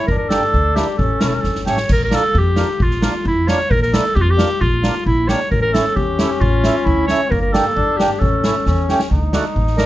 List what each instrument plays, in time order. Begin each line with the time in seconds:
0.07 upright bass G1, trombone D4, clarinet A#4, kick
0.18 clarinet A#4
0.29 accordion A#3 D4 G4, clarinet A4, snare
0.54 upright bass D2, kick
0.76 accordion A#3 D4 E4, clarinet G4, snare
0.98 upright bass A1, trombone C#4, clarinet A4, kick
1.21 upright bass E1, accordion A3 C#4 E4, snare
1.44 upright bass G1, kick, snare
1.55 snare
1.66 upright bass A1, accordion A3 C#4 G4, clarinet C#5, snare
1.77 snare
1.89 upright bass A#1, clarinet A#4, kick, crash
2.04 clarinet A#4
2.11 accordion A#3 D4 F4, snare
2.15 clarinet A4
2.35 upright bass F2, clarinet G4, kick
2.56 accordion A#3 D4 F4, snare
2.80 upright bass A#1, clarinet F4, kick
2.91 snare
3.02 accordion A#3 D4 F4, snare
3.25 upright bass F2, clarinet E4, kick
3.48 accordion A#3 D4 F4, clarinet C#5, snare
3.71 upright bass A#1, clarinet A#4, kick
3.82 clarinet A#4, snare
3.93 accordion A#3 D4 E4, clarinet A4, snare
4.15 upright bass F2, clarinet G4, kick
4.21 clarinet F4
4.30 clarinet G4
4.38 accordion A#3 D4 F4, snare
4.61 upright bass A#1, clarinet F4, kick
4.83 accordion A#3 D4 F4, snare
5.06 upright bass A#1, clarinet E4, kick
5.28 accordion A#3 D4 G4, clarinet C#5, snare
5.51 upright bass A1, trombone C#4, clarinet A#4, kick
5.62 clarinet A#4
5.74 accordion A3 C#4 E4, clarinet A4, snare
5.96 upright bass E2, clarinet G4, kick
6.19 accordion A3 C#4 E4, snare
6.40 upright bass A1, clarinet F4, kick
6.64 accordion A3 C#4 E4, snare
6.85 upright bass D2, clarinet E4, kick
7.07 accordion A3 C#4 E4, clarinet C#5, snare
7.31 upright bass G1, trombone A#3, clarinet A#4, kick
7.42 clarinet A#4
7.53 accordion A#3 D4 G4, clarinet A4, snare
7.76 upright bass G1, trombone D4, kick
7.97 accordion A#3 D4 G4, clarinet G4, snare
8.19 upright bass A1, trombone C#4, clarinet A4, kick
8.44 accordion A3 C#4 E4, snare
8.66 upright bass E2, trombone C#4, kick, snare
8.89 accordion A3 C#4 G4, snare
8.99 snare
9.10 upright bass D2, trombone D#4, kick
9.33 accordion A3 D4 F#4, snare
9.56 upright bass A1, kick
9.67 snare
9.78 accordion A3 D4 A4, clarinet A#4, snare